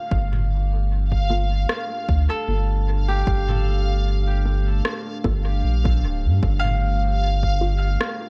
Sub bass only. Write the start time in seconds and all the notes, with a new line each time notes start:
0.11 G1
2.09 D2
2.48 G1
3.27 G1
5.24 G1
5.64 A#1
6.03 D1
6.25 G2
6.43 G1